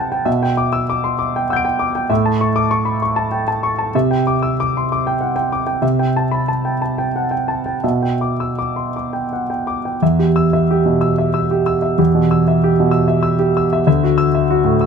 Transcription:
Already playing: C3 E5 F#5 G5 A5 B5
0.12 G5
0.25 B2 E5
0.43 G5
0.57 D6
0.73 E6
0.90 D6
1.04 C6
1.19 D6
1.36 G5
1.50 F#5 E6 G6
1.56 D7
1.65 G5
1.79 D6
1.95 G5
2.10 A2 E5
2.26 A5
2.41 C#6
2.56 D6
2.71 C#6
2.85 B5
3.02 C#6
3.16 A5
3.32 G5
3.48 A5
3.63 C#6
3.79 A5
3.95 C3 E5
4.11 G5
4.27 D6
4.42 E6
4.60 D6
4.77 C6
4.92 D6
5.07 G5
5.21 F#5
5.36 G5
5.52 D6
5.67 G5
5.82 C3 E5
5.99 G5
6.16 A5
6.31 B5
6.48 A5
6.65 G5
6.82 A5
6.98 G5
7.16 F#5
7.31 G5
7.48 A5
7.66 G5
7.84 B2 E5
8.02 G5
8.21 D6
8.40 E6
8.59 D6
8.76 C6
8.96 D6
9.13 G5
9.33 F#5
9.50 G5
9.67 D6
9.85 G5
10.02 E2 E5
10.19 G4
10.36 E6
10.53 E5
10.71 G4
10.86 B2
11.01 E6
11.18 E5
11.34 E6
11.51 G4
11.66 E6
11.82 E5
11.98 E2 G4
12.15 B2
12.31 E6
12.48 E5
12.64 G4
12.80 B2
12.91 E6
13.08 E5
13.23 E6
13.39 G4
13.57 E6
13.73 E5
13.87 D2 E5
14.03 F#4
14.18 E6
14.34 E5
14.50 F#4
14.64 A2
14.81 E6

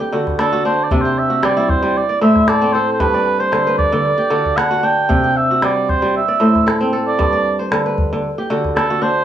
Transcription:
Already playing: C4 B4
0.00 G4
0.13 D3 F#4
0.27 calabash thump, calabash click
0.39 D4 A4, calabash click
0.53 F#4
0.65 D4 C5
0.84 D5
0.91 C3, calabash thump
1.02 G4 C5
1.19 E5
1.30 F#4
1.43 G3 D5, calabash click
1.57 E4, calabash click
1.69 C5, calabash thump
1.83 G3
1.98 D5
2.09 D5
2.22 A2 C5 E5
2.36 calabash thump, calabash click
2.48 A4 D5, calabash click
2.62 C4
2.73 A4 C5
2.92 C5
2.99 G2 B4, calabash thump
3.14 D5
3.39 C5, calabash click
3.52 D3, calabash click
3.67 B4, calabash click
3.78 D5, calabash thump
3.92 D3
4.05 calabash click
4.18 G4
4.30 D3 F#4, calabash click
4.45 calabash thump
4.56 D4 F#5, calabash click
4.71 F#4, calabash click
4.83 D4 G5
5.09 C3, calabash thump
5.24 G4
5.37 E5
5.51 F#4
5.62 G3 D5, calabash click
5.77 calabash click
5.89 C5, calabash thump
6.02 G3
6.17 E5
6.28 D5
6.40 A2 C5
6.55 calabash thump, calabash click
6.67 A4, calabash click
6.81 C4
6.93 A4
7.08 D5
7.19 G2, calabash thump
7.33 D5
7.59 C5
7.72 D3, calabash click
7.86 B4, calabash click
7.98 calabash thump
8.13 D3
8.38 G4
8.50 D3 F#4
8.65 calabash thump, calabash click
8.76 D4 A4, calabash click
8.90 F#4
9.02 D4 C5

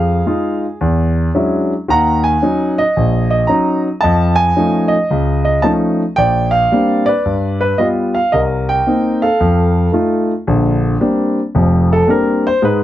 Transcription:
Already playing: F2 G#4 F5
0.26 G#3 D#4 F4
0.81 E2
1.35 F#3 G#3 C#4 D4 E4
1.88 D#2 D#3 F#5 A#5
2.24 G#5
2.42 F#3 C#4 D#4
2.78 D#5
2.97 A#1
3.30 D#5
3.47 F#3 C#4 D#4 A#5
4.01 F2 D#5 A5
4.36 G#5
4.56 F3 A3 C#4 D#4
4.88 D#5
5.11 C#2
5.45 D#5
5.62 F3 A3 C#4 D#4 A5
6.16 A#1 D5 G5
6.51 F5
6.72 G3 A#3 C4 D4
7.06 B4 D5
7.26 G2
7.61 B4
7.78 G3 B3 F4 D#5
8.15 F5
8.32 C2 A#4 D#5
8.69 G5
8.87 A#3 C4 D#4
9.22 A4 F5
9.40 F2
9.92 A3 D#4 F4
10.47 A#1 D3
11.00 G3 A#3 C4 D4
11.55 F1 F2
11.93 A4
12.07 G3 A#3 C4 D4 A#4
12.47 C5
12.62 G#2 G#3 B4

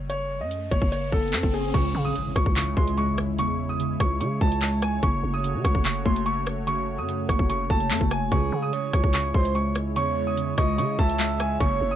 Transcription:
Already playing: F#1, riser
0.10 C#5, closed hi-hat
0.41 F#2 D#5
0.51 closed hi-hat
0.71 F#1 C#5, kick, closed hi-hat
0.82 F#1, kick
0.92 C#5, closed hi-hat
1.12 F#1 A4, kick
1.23 closed hi-hat
1.28 closed hi-hat
1.33 F#2, clap, closed hi-hat
1.38 closed hi-hat
1.43 F#1, kick
1.53 G#4, open hi-hat
1.74 C#2 C#3 G#3 E4 C#5 C#6, kick, closed hi-hat, crash, impact
1.95 C#3
2.05 D#6
2.15 C#3, closed hi-hat
2.36 C#2 C#6, kick, cross-stick, closed hi-hat
2.46 C#2, kick
2.56 C#3 C#6, clap, closed hi-hat
2.77 C#2 G#3 C6, kick
2.87 closed hi-hat
2.97 G#3 C#6
3.18 cross-stick, closed hi-hat
3.38 E2 C#3 C#6, closed hi-hat
3.69 D#6
3.80 C#3, closed hi-hat
4.00 C#2 C#6, kick, cross-stick, closed hi-hat
4.21 C#3 C#6, closed hi-hat
4.41 C#2 G#3 A5, kick
4.52 closed hi-hat
4.62 G#3, clap, closed hi-hat
4.82 G#5, cross-stick, closed hi-hat
5.03 F#1 C#3 A3 F#4 C#6, kick, closed hi-hat
5.23 F#1
5.34 D#6
5.44 C#3, closed hi-hat
5.54 C#3
5.65 C#2 C#6, kick, cross-stick, closed hi-hat
5.75 F#1, kick
5.85 C#3 C#6, clap, closed hi-hat
6.06 F#1 A3 C6, kick
6.16 closed hi-hat
6.26 A3 C#6
6.47 cross-stick, closed hi-hat
6.67 C#3 C#6, closed hi-hat
6.98 F#2 D#6
7.08 C#3, closed hi-hat
7.29 F#1 C#6, kick, cross-stick, closed hi-hat
7.39 F#1, kick
7.49 C#3 C#6, closed hi-hat
7.70 F#1 A3 A5, kick
7.80 closed hi-hat
7.91 F#2 A3, clap, closed hi-hat
8.01 F#1, kick
8.11 G#5, cross-stick, closed hi-hat
8.32 C#2 C#3 G#3 E4 G#4 C#6, kick, closed hi-hat
8.52 C#3
8.62 D#6
8.73 C#3 C#5, closed hi-hat
8.93 C#2 C#6, kick, cross-stick, closed hi-hat
9.04 C#2, kick
9.14 C#3 C#6, clap, closed hi-hat
9.34 C#2 G#3 C5 C6, kick
9.45 closed hi-hat
9.55 G#3 C#6
9.75 cross-stick, closed hi-hat
9.96 E2 C#3 C#5 C#6, closed hi-hat
10.27 D#6
10.37 C#3, closed hi-hat
10.58 C#2 D#5 C#6, kick, cross-stick, closed hi-hat
10.78 C#3 C#6, closed hi-hat
10.99 C#2 G#3 E5 A5, kick
11.09 closed hi-hat
11.19 G#3, clap, closed hi-hat
11.40 G#5, cross-stick, closed hi-hat
11.60 F#1 C#3 A3 F#4 C#5 C#6, kick, closed hi-hat
11.81 F#1
11.91 D#6

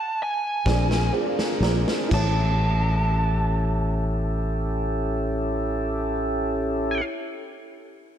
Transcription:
Already playing: A5
0.23 G#5
0.65 A#1 C4 D4 F4 G#4 A#4 C5 D5, kick, snare
0.91 snare
1.12 F4 G#4 C5 D5 F5
1.39 snare
1.60 A#1 F4 G#4 C5 D5 A#5, snare
1.88 snare
2.08 A1 E4 G4 B4, kick, crash
2.12 C#4 E4 G4 A4 C#5 A5

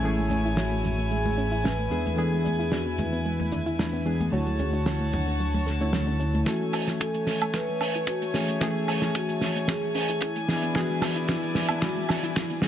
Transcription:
Already playing: A1 A3 E4 C#5 G#5
0.03 E3 G#3 A3 C#4 E4 G#4, cabasa
0.18 G#3
0.30 C#4, high conga, cabasa
0.45 E4, cabasa
0.57 C#4 F#4, snare, cabasa
0.72 A3
0.84 G#3, high conga, low conga, cabasa
0.98 A3, cabasa
1.11 G#3 G#4, cabasa
1.25 G#3, high conga
1.38 C#4, cabasa
1.52 E4, cabasa
1.64 C#4 B4, snare, high conga, cabasa
1.78 A3
1.91 E2 E3 G#3 B3 D4 G#4 B4, cabasa
2.05 B3, high conga, cabasa
2.12 A4
2.17 E3 G#3 B3 D4 G#4, cabasa
2.32 G#3
2.45 D4, high conga, cabasa
2.59 E4, cabasa
2.72 D4 F#4, snare, cabasa
2.86 B3
2.98 G#3 E4, high conga, low conga, cabasa
3.13 B3, cabasa
3.25 G#3, cabasa
3.40 G#3, high conga
3.52 D4, low conga, cabasa
3.66 E4, cabasa
3.79 D4, snare, high conga, cabasa
3.93 B3
4.05 E3 G#3 B3 D4 G#4, cabasa
4.20 B3, high conga, cabasa
4.32 D2 D3 F#3 A3 E4 F#4 C#5 A5, cabasa
4.46 F#3, cabasa
4.53 G#4
4.59 C#4 F#4, high conga, cabasa
4.73 D4, cabasa
4.86 C#4 E4, snare, cabasa
5.01 A3
5.12 F#3 D4, high conga, low conga, cabasa
5.27 A3, cabasa
5.39 F#3, cabasa
5.54 F#3, high conga
5.66 A4, snare, cabasa
5.80 D3 A3 C#4 E4 C#5, cabasa
5.93 F#3 E4, snare, high conga, cabasa
6.07 C#4, cabasa
6.20 C#4, cabasa
6.34 C#4, high conga, cabasa
6.46 E3 G#3 A3 C#4 F#4 A4 C#5 G#5, kick, snare, closed hi-hat, cabasa
6.61 G#3
6.73 C#4, kick, open hi-hat, cabasa, high woodblock
6.87 E4, snare, closed hi-hat, cabasa
7.00 C#4 A4, kick, closed hi-hat, cabasa
7.14 A3, closed hi-hat, cabasa
7.27 G#3, snare, open hi-hat, cabasa
7.41 A3, closed hi-hat, cabasa, high woodblock
7.54 G#3 B4, kick, snare, closed hi-hat, cabasa
7.68 G#3
7.81 C#4, open hi-hat, cabasa, high woodblock
7.95 E4, closed hi-hat, cabasa
8.07 C#4 F#4, kick, closed hi-hat, cabasa
8.22 A3, closed hi-hat
8.34 E3 G#3 A3 C#4 G#4, snare, open hi-hat, cabasa
8.48 A3, closed hi-hat, cabasa
8.61 E3 G#3 A3 C#4 G#4, kick, snare, closed hi-hat, cabasa
8.76 G#3
8.88 C#4, open hi-hat, cabasa, high woodblock
9.02 E4, snare, closed hi-hat, cabasa
9.15 C#4 F#4, kick, closed hi-hat, cabasa
9.29 A3, closed hi-hat, cabasa
9.41 G#3, snare, open hi-hat, cabasa
9.56 A3, closed hi-hat, cabasa
9.68 G#3 G#4, kick, snare, closed hi-hat, cabasa
9.83 G#3
9.95 C#4, open hi-hat, cabasa
10.09 E4, closed hi-hat, cabasa
10.21 C#4 E4, kick, closed hi-hat, cabasa
10.36 A3, closed hi-hat
10.48 E3 G#3 B3 D4 E4 G#4 B4 D5, snare, open hi-hat, cabasa
10.63 B3, closed hi-hat, cabasa
10.74 E3 G#3 B3 D4 F#4 G#4, kick, snare, closed hi-hat, cabasa
10.90 G#3
11.02 D4, kick, snare, open hi-hat, cabasa, high woodblock
11.16 E4, closed hi-hat, cabasa
11.28 D4 E4, kick, snare, closed hi-hat, cabasa
11.43 B3, closed hi-hat, cabasa
11.55 G#3, snare, open hi-hat, cabasa
11.69 B3, closed hi-hat, cabasa, high woodblock
11.82 G#3 F#4, kick, snare, closed hi-hat, cabasa
11.97 G#3
12.09 D4, snare, open hi-hat, cabasa, high woodblock
12.23 E4, closed hi-hat, cabasa
12.36 D4 E4, kick, snare, closed hi-hat, cabasa
12.50 B3, closed hi-hat
12.62 E3 G#3 B3 D4 G#4, snare, open hi-hat, cabasa

